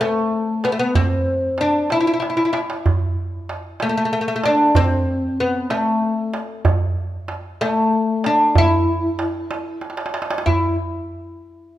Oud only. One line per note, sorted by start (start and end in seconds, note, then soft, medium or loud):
0.01 0.64 A3 medium
0.65 0.71 B3 medium
0.72 0.78 A3 medium
0.79 0.95 B3 medium
0.95 1.60 C4 medium
1.61 1.89 D4 medium
1.92 1.98 E4 medium
2.00 2.06 E4 medium
2.07 2.12 E4 medium
2.14 2.19 E4 soft
2.20 2.27 E4 medium
2.30 2.36 E4 soft
2.37 2.43 E4 medium
2.45 2.51 E4 soft
2.53 2.58 E4 medium
3.82 3.88 A3 medium
3.89 3.96 A3 medium
3.97 4.04 A3 medium
4.05 4.11 A3 medium
4.13 4.19 A3 medium
4.21 4.27 A3 medium
4.28 4.34 A3 medium
4.36 4.42 A3 medium
4.46 4.77 D4 medium
4.76 5.40 C4 loud
5.40 5.70 B3 medium
5.71 6.38 A3 medium
7.61 8.26 A3 medium
8.26 8.57 D4 medium
8.58 9.79 E4 medium
10.46 10.75 E4 medium